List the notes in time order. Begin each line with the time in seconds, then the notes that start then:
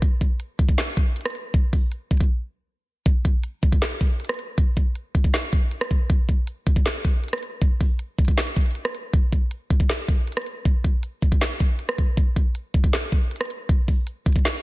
0.02 kick, closed hi-hat
0.21 kick, closed hi-hat
0.40 closed hi-hat
0.59 kick, closed hi-hat
0.69 kick
0.78 snare, clap, closed hi-hat
0.97 kick, closed hi-hat
1.16 closed hi-hat
1.21 closed hi-hat
1.26 cross-stick, closed hi-hat
1.30 closed hi-hat
1.35 closed hi-hat
1.54 kick, closed hi-hat
1.73 kick, open hi-hat
1.92 closed hi-hat
2.11 kick, closed hi-hat
2.17 kick, closed hi-hat
2.24 closed hi-hat
3.06 kick, closed hi-hat
3.25 kick, closed hi-hat
3.44 closed hi-hat
3.63 kick, closed hi-hat
3.72 kick
3.82 snare, clap, closed hi-hat
4.01 kick, closed hi-hat
4.20 closed hi-hat
4.25 closed hi-hat
4.29 cross-stick, closed hi-hat
4.34 closed hi-hat
4.39 closed hi-hat
4.58 kick, closed hi-hat
4.77 kick, closed hi-hat
4.95 closed hi-hat
5.15 kick, closed hi-hat
5.24 kick
5.34 snare, clap, closed hi-hat
5.53 kick, closed hi-hat
5.71 closed hi-hat
5.81 cross-stick
5.91 kick, closed hi-hat
6.10 kick, closed hi-hat
6.29 kick, closed hi-hat
6.47 closed hi-hat
6.67 kick, closed hi-hat
6.76 kick
6.85 snare, clap, closed hi-hat
7.05 kick, closed hi-hat
7.24 closed hi-hat
7.28 closed hi-hat
7.33 cross-stick, closed hi-hat
7.38 closed hi-hat
7.43 closed hi-hat
7.62 kick, closed hi-hat
7.81 kick, open hi-hat
7.99 closed hi-hat
8.19 kick, closed hi-hat
8.25 kick, closed hi-hat
8.31 closed hi-hat
8.38 snare, clap, closed hi-hat
8.47 closed hi-hat
8.57 kick, closed hi-hat
8.61 closed hi-hat
8.66 closed hi-hat
8.71 closed hi-hat
8.75 closed hi-hat
8.85 cross-stick
8.95 closed hi-hat
9.13 kick, closed hi-hat
9.32 kick, closed hi-hat
9.51 closed hi-hat
9.70 kick, closed hi-hat
9.80 kick
9.89 snare, clap, closed hi-hat
10.08 kick, closed hi-hat
10.27 closed hi-hat
10.32 closed hi-hat
10.37 cross-stick, closed hi-hat
10.42 closed hi-hat
10.47 closed hi-hat
10.65 kick, closed hi-hat
10.84 kick, closed hi-hat
11.03 closed hi-hat
11.22 kick, closed hi-hat
11.32 kick
11.41 snare, clap, closed hi-hat
11.60 kick, closed hi-hat
11.79 closed hi-hat
11.89 cross-stick
11.98 kick, closed hi-hat
12.17 kick, closed hi-hat
12.36 kick, closed hi-hat
12.55 closed hi-hat
12.74 kick, closed hi-hat
12.84 kick
12.93 snare, clap, closed hi-hat
13.12 kick, closed hi-hat
13.31 closed hi-hat
13.36 closed hi-hat
13.41 cross-stick, closed hi-hat
13.45 closed hi-hat
13.50 closed hi-hat
13.69 kick, closed hi-hat
13.88 kick, open hi-hat
14.07 closed hi-hat
14.26 kick, closed hi-hat
14.32 kick, closed hi-hat
14.39 closed hi-hat
14.45 snare, clap, closed hi-hat
14.55 closed hi-hat